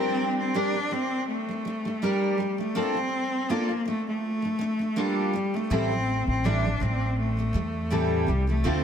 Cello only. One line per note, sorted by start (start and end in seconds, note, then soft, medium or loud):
0.00 0.39 C4 medium
0.40 0.57 C4 medium
0.56 0.94 D4 medium
0.92 1.29 C4 medium
1.29 2.05 A3 medium
2.03 2.60 G3 medium
2.61 2.79 A3 medium
2.78 3.53 C4 medium
3.51 3.87 A#3 medium
3.88 4.06 A3 medium
4.09 5.00 A3 medium
4.99 5.57 G3 medium
5.56 5.74 A3 medium
5.72 6.28 C4 medium
6.29 6.47 C4 medium
6.46 6.76 D4 medium
6.76 6.83 D4 medium
6.82 7.18 C4 medium
7.20 7.94 A3 medium
7.93 8.49 G3 medium
8.50 8.67 A3 medium
8.65 8.84 C4 medium